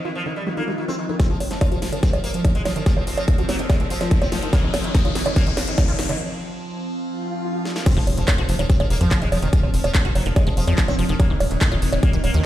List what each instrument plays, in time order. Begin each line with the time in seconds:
Already playing: ambient pad F3 C4
0.05 sitar D#3, acid bass F4
0.15 sitar F3
0.26 acid bass D3, sitar D#3
0.36 sitar G3, swell
0.47 sitar D#3, acid bass G3
0.57 acid bass D#3, sitar A#3
0.67 sitar D#3, acid bass G3
0.78 sitar D#3
0.88 acid bass D#3, sitar C4
0.99 sitar D#3
1.09 acid bass D#3, sitar D#3
1.20 ambient pad F3 C4, sitar C4, kick, snare, closed hi-hat, riser
1.30 analog synth bass F1, acid bass F3, sitar F3
1.40 analog synth bass F1, open hi-hat, high bongo
1.51 analog synth bass F1, sitar F3, snare, closed hi-hat
1.61 sitar F4, kick, closed hi-hat, high bongo
1.72 analog synth bass F1, sitar F3, acid bass F#4, closed hi-hat
1.82 analog synth bass F#1, sitar F3, snare, open hi-hat
1.92 analog synth bass F1, acid bass D#3, sitar F3, closed hi-hat, high bongo
2.03 sitar C4, kick, snare, closed hi-hat
2.13 analog synth bass F1, sitar F3, acid bass G#3, closed hi-hat, high bongo
2.24 analog synth bass F1, sitar A#3, open hi-hat
2.34 analog synth bass F1, acid bass F3, sitar F3, closed hi-hat
2.45 sitar F3, kick, closed hi-hat, high bongo
2.55 analog synth bass F1, sitar G#3, acid bass F#4, closed hi-hat
2.65 analog synth bass F1, acid bass F3, sitar F3, snare, open hi-hat, high bongo
2.76 analog synth bass F1, acid bass D#3, sitar F3, closed hi-hat
2.86 sitar F3, kick, snare, closed hi-hat
2.97 analog synth bass F1, acid bass F3, sitar F3, high bongo
3.07 analog synth bass F1, sitar F3, open hi-hat
3.17 analog synth bass F1, sitar F3, closed hi-hat, high bongo
3.28 sitar F3, kick, closed hi-hat
3.38 analog synth bass F1, sitar F3, acid bass F#4, closed hi-hat
3.49 analog synth bass F#1, sitar F#3, snare, open hi-hat, high bongo
3.59 analog synth bass F1, acid bass D#3, sitar F3, closed hi-hat
3.70 sitar G#3, kick, snare, closed hi-hat, high bongo
3.80 analog synth bass F1, sitar F3, acid bass G#3, closed hi-hat
3.90 analog synth bass F1, sitar F3, open hi-hat
4.01 acid bass F3, sitar F3, snare, closed hi-hat, high bongo
4.11 sitar F3, kick, closed hi-hat
4.22 analog synth bass F1, sitar C4, acid bass F#4, closed hi-hat, high bongo
4.32 acid bass F3, sitar F3, snare, open hi-hat
4.42 analog synth bass F1, acid bass D#3, sitar F3, closed hi-hat
4.53 sitar A#3, kick, snare, closed hi-hat, high bongo
4.63 acid bass D#3, sitar D#3
4.74 snare, open hi-hat, high bongo
4.84 sitar D#3, closed hi-hat
4.95 sitar D#4, kick, snare, closed hi-hat
5.05 sitar D#3, acid bass F4, closed hi-hat, high bongo
5.15 analog synth bass F1, sitar D#3, snare, open hi-hat
5.26 acid bass D3, sitar D#3, closed hi-hat, high bongo
5.36 sitar A#3, kick, snare, closed hi-hat
5.47 acid bass D#3, sitar D#3, closed hi-hat
5.57 snare, open hi-hat, high bongo
5.67 sitar D#3, closed hi-hat
5.78 sitar D#4, kick, snare, closed hi-hat, high bongo
5.88 analog synth bass D#1, sitar D#3, acid bass F4, closed hi-hat
5.99 sitar D#3, snare, open hi-hat
6.09 acid bass D3, sitar D#3, closed hi-hat, high bongo
7.03 swell
7.65 snare
7.76 snare
7.86 ambient pad F3 C4, sitar C4, kick, closed hi-hat, crash, impact
7.97 analog synth bass F1, acid bass F3, sitar F3
8.07 analog synth bass F1, open hi-hat, high bongo
8.18 analog synth bass F1, sitar F3, closed hi-hat
8.28 sitar F4, kick, clap, closed hi-hat, high bongo
8.38 analog synth bass F1, sitar F3, acid bass F#4, closed hi-hat
8.49 analog synth bass F#1, sitar F3, open hi-hat
8.59 analog synth bass F1, acid bass D#3, sitar F3, closed hi-hat, high bongo
8.70 sitar C4, kick, closed hi-hat
8.80 analog synth bass F1, sitar F3, acid bass G#3, closed hi-hat, high bongo
8.90 analog synth bass F1, sitar A#3, open hi-hat
9.01 analog synth bass F2, acid bass F3, sitar F3, closed hi-hat
9.11 sitar F3, kick, clap, closed hi-hat, high bongo
9.22 analog synth bass F1, sitar G#3, acid bass F#4, closed hi-hat
9.32 analog synth bass F1, acid bass F3, sitar F3, open hi-hat, high bongo
9.42 analog synth bass F1, acid bass D#3, sitar F3, closed hi-hat
9.53 sitar F3, kick, closed hi-hat
9.63 analog synth bass F1, acid bass F3, sitar F3, high bongo
9.74 analog synth bass F1, sitar F3, open hi-hat
9.84 analog synth bass F1, sitar F3, closed hi-hat, high bongo
9.95 sitar F3, kick, clap, closed hi-hat
10.05 analog synth bass F1, sitar F3, acid bass F#4, closed hi-hat
10.15 analog synth bass F#1, sitar F#3, open hi-hat, high bongo
10.26 analog synth bass F1, acid bass D#3, sitar F3, closed hi-hat
10.36 sitar G#3, kick, closed hi-hat, high bongo
10.47 analog synth bass F1, sitar F3, acid bass G#3, closed hi-hat
10.57 analog synth bass F1, sitar F3, open hi-hat
10.67 analog synth bass F2, acid bass F3, sitar F3, closed hi-hat, high bongo
10.78 sitar F3, kick, clap, closed hi-hat
10.88 analog synth bass F1, sitar C4, acid bass F#4, closed hi-hat, high bongo
10.99 analog synth bass F1, acid bass F3, sitar F3, open hi-hat
11.09 analog synth bass F1, acid bass D#3, sitar F3, closed hi-hat
11.20 sitar A#3, kick, closed hi-hat, high bongo
11.30 analog synth bass D#1, acid bass D#3, sitar D#3
11.40 analog synth bass D#1, open hi-hat, high bongo
11.51 analog synth bass D#1, sitar D#3, closed hi-hat
11.61 sitar D#4, kick, clap, closed hi-hat
11.72 analog synth bass D#1, sitar D#3, acid bass F4, closed hi-hat, high bongo
11.82 analog synth bass F1, sitar D#3, open hi-hat
11.92 analog synth bass D#1, acid bass D3, sitar D#3, closed hi-hat, high bongo
12.03 sitar A#3, kick, closed hi-hat
12.13 analog synth bass D#1, sitar D#3, acid bass G3, closed hi-hat
12.24 analog synth bass D#1, sitar A#3, open hi-hat, high bongo
12.34 analog synth bass D#2, acid bass D#3, sitar D#3, closed hi-hat